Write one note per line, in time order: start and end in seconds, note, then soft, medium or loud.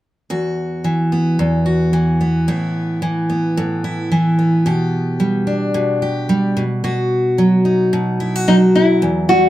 0.30 1.38 E2 medium
0.30 1.65 F#4 medium
0.84 1.93 E3 medium
1.12 2.20 B3 soft
1.39 2.48 E2 medium
1.66 2.48 F#4 soft
1.93 3.02 E3 medium
2.21 3.29 B3 soft
2.48 3.56 A2 medium
2.48 3.83 E4 medium
3.02 4.10 E3 medium
3.30 4.38 B3 soft
3.57 4.65 A2 medium
3.84 4.66 E4 medium
4.12 4.72 E3 medium
4.39 5.46 B3 soft
4.66 5.73 B2 medium
4.66 6.01 G4 medium
5.20 6.28 G3 medium
5.47 6.62 D4 soft
5.74 6.55 B2 medium
6.02 6.62 G4 medium
6.29 6.62 G3 medium
6.57 6.83 B2 medium
6.84 7.92 B2 medium
6.84 8.20 F#4 medium
7.38 8.47 F#3 medium
7.65 8.74 D#4 soft
7.93 9.08 B2 medium
8.20 8.36 E4 medium
8.36 9.08 F#4 soft
8.48 9.32 F#3 medium
8.48 8.55 D#4 medium
8.75 9.31 E4 medium
9.02 9.49 E2 medium
9.29 9.49 G3 soft
9.29 9.49 F#4 medium